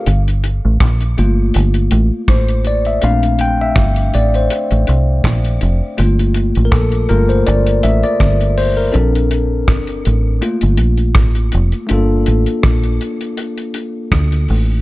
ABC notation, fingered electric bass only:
X:1
M:4/4
L:1/16
Q:"Swing 16ths" 1/4=81
K:Gdor
V:1 name="Fingered electric bass" clef=bass
G,,,3 A,,, B,,,2 G,,,2 G,,,2 A,,, z A,,,4 | B,,,4 G,,,2 A,,,2 z A,,, C,,2 B,,,2 F,,, z | G,,,3 A,,, B,,,2 G,,,2 G,,,2 A,,, z G,,,4 | B,,,4 G,,,2 A,,,2 z G,,, B,,,2 A,,,2 F,,, z |
G,,,2 A,,, z B,,,2 z6 D,,2 A,,,2 |]